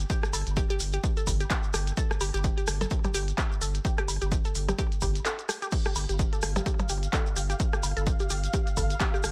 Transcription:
0.10 G4, kick, closed hi-hat, shekere
0.23 cross-stick, shekere
0.33 G1 A4, open hi-hat, low woodblock, shekere
0.47 G1, closed hi-hat, shekere
0.57 G4, kick, closed hi-hat, shekere
0.70 G4, closed hi-hat, shekere
0.80 G1, open hi-hat, shekere
0.92 G4, closed hi-hat, shekere
1.04 kick, closed hi-hat, shekere
1.17 A4, closed hi-hat, shekere
1.27 G1, kick, open hi-hat, low woodblock, shekere
1.40 G4, closed hi-hat, shekere
1.50 G4, kick, clap, closed hi-hat, shekere
1.63 shekere
1.74 G1 G4, cross-stick, open hi-hat, shekere
1.87 closed hi-hat, shekere
1.97 A4, kick, closed hi-hat, shekere
2.11 cross-stick, shekere
2.21 G1 G4, open hi-hat, low woodblock, shekere
2.34 G1 G4, closed hi-hat, shekere
2.44 kick, closed hi-hat, shekere
2.58 G4, closed hi-hat, shekere
2.67 G1, cross-stick, open hi-hat, shekere
2.81 A4, closed hi-hat, percussion blips, shekere
2.91 kick, closed hi-hat, shekere
3.04 G4, closed hi-hat, percussion blips, shekere
3.14 G1 G4, open hi-hat, shekere
3.28 closed hi-hat, shekere
3.38 G4, kick, clap, closed hi-hat, low woodblock, shekere
3.52 shekere
3.61 G1 A4, open hi-hat, shekere
3.74 closed hi-hat, shekere
3.85 G4, kick, closed hi-hat, shekere
3.98 G4, cross-stick, closed hi-hat, shekere
4.08 G1, open hi-hat, low woodblock, shekere
4.21 G1 G4, closed hi-hat, shekere
4.32 kick, closed hi-hat, shekere
4.45 A4, closed hi-hat, shekere
4.55 G1, open hi-hat, shekere
4.69 G4, closed hi-hat, percussion blips, shekere
4.78 G4, kick, closed hi-hat, shekere
4.92 closed hi-hat, shekere
5.01 G1 G4, kick, open hi-hat, low woodblock, shekere
5.15 closed hi-hat, shekere
5.25 A4, clap, closed hi-hat, shekere
5.39 closed hi-hat, shekere
5.49 G4, cross-stick, open hi-hat, shekere
5.62 G4, closed hi-hat, shekere
5.72 G4 F5, kick, closed hi-hat, crash, shekere
5.85 G4, cross-stick, shekere
5.95 G1, open hi-hat, low woodblock, shekere
6.09 G1 G4, closed hi-hat, shekere
6.19 kick, closed hi-hat, shekere
6.33 A4, closed hi-hat, shekere
6.42 G1, cross-stick, open hi-hat, shekere
6.56 G4, closed hi-hat, percussion blips, shekere
6.66 G4, kick, closed hi-hat, shekere
6.79 closed hi-hat, percussion blips, shekere
6.89 G1 G4, open hi-hat, shekere
7.03 closed hi-hat, shekere
7.13 A4, kick, clap, closed hi-hat, low woodblock, shekere
7.26 shekere
7.36 G1 G4, open hi-hat, shekere
7.50 G4, closed hi-hat, shekere
7.60 kick, closed hi-hat, shekere
7.73 G4, cross-stick, shekere
7.83 G1, open hi-hat, low woodblock, shekere
7.97 G1 A4, closed hi-hat, shekere
8.07 kick, closed hi-hat, shekere
8.20 G4, closed hi-hat, shekere
8.30 G1 G4, open hi-hat, shekere
8.44 closed hi-hat, shekere
8.53 G4, kick, closed hi-hat, shekere
8.67 closed hi-hat, shekere
8.77 G1 A4, kick, open hi-hat, low woodblock, shekere
8.90 closed hi-hat, shekere
9.00 G4, kick, clap, closed hi-hat, shekere
9.14 G4, shekere
9.23 G1, cross-stick, open hi-hat, shekere

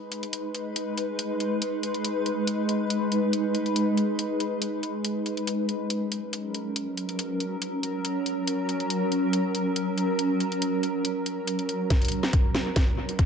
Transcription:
Already playing: G#3 D#4 B4
0.12 closed hi-hat
0.23 closed hi-hat
0.33 closed hi-hat
0.55 closed hi-hat
0.76 closed hi-hat
0.98 closed hi-hat
1.19 closed hi-hat
1.40 closed hi-hat
1.62 closed hi-hat
1.83 closed hi-hat
1.94 closed hi-hat
2.05 closed hi-hat
2.26 closed hi-hat
2.47 closed hi-hat
2.69 closed hi-hat
2.90 closed hi-hat
3.12 closed hi-hat
3.33 closed hi-hat
3.55 closed hi-hat
3.66 closed hi-hat
3.76 closed hi-hat
3.97 closed hi-hat
4.19 closed hi-hat
4.40 closed hi-hat
4.62 closed hi-hat
4.83 closed hi-hat
5.04 F#3 C#4 A#4, closed hi-hat
5.26 closed hi-hat
5.37 closed hi-hat
5.47 closed hi-hat
5.69 closed hi-hat
5.90 closed hi-hat
6.12 closed hi-hat
6.33 closed hi-hat
6.54 closed hi-hat
6.76 closed hi-hat
6.97 closed hi-hat
7.09 closed hi-hat
7.19 closed hi-hat
7.40 closed hi-hat
7.62 closed hi-hat
7.83 closed hi-hat
8.05 closed hi-hat
8.26 closed hi-hat
8.47 closed hi-hat
8.69 closed hi-hat
8.80 closed hi-hat
8.90 closed hi-hat
9.12 closed hi-hat
9.33 closed hi-hat
9.55 closed hi-hat
9.76 closed hi-hat
9.98 closed hi-hat
10.19 closed hi-hat
10.40 closed hi-hat
10.52 closed hi-hat
10.62 closed hi-hat
10.83 closed hi-hat
11.05 closed hi-hat
11.26 closed hi-hat
11.47 closed hi-hat
11.59 closed hi-hat
11.69 closed hi-hat
11.90 G#3 D#4 B4, kick, snare, closed hi-hat
12.02 closed hi-hat
12.05 closed hi-hat
12.08 closed hi-hat
12.12 closed hi-hat
12.23 snare
12.33 kick, closed hi-hat
12.55 snare
12.76 kick, snare, closed hi-hat
13.09 closed hi-hat
13.19 kick, closed hi-hat

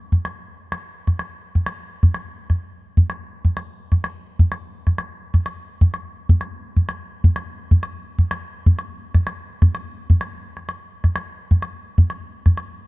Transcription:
0.12 calabash thump
0.25 calabash click
0.72 calabash click
1.07 calabash thump, calabash click
1.19 calabash click
1.55 calabash thump
1.66 calabash click
2.03 calabash thump, calabash click
2.14 calabash click
2.50 calabash thump, calabash click
2.97 calabash thump
3.10 calabash click
3.45 calabash thump
3.57 calabash click
3.92 calabash thump, calabash click
4.04 calabash click
4.39 calabash thump
4.52 calabash click
4.87 calabash thump, calabash click
4.98 calabash click
5.34 calabash thump, calabash click
5.46 calabash click
5.81 calabash thump
5.94 calabash click
6.29 calabash thump
6.41 calabash click
6.77 calabash thump
6.89 calabash click
7.24 calabash thump
7.36 calabash click
7.71 calabash thump
7.83 calabash click
8.19 calabash thump
8.31 calabash click
8.66 calabash thump
8.79 calabash click
9.14 calabash thump, calabash click
9.27 calabash click
9.62 calabash thump, calabash click
9.75 calabash click
10.10 calabash thump
10.21 calabash click
10.57 calabash click
10.69 calabash click
11.04 calabash thump, calabash click
11.16 calabash click
11.51 calabash thump
11.62 calabash click
11.98 calabash thump
12.10 calabash click
12.46 calabash thump, calabash click
12.57 calabash click

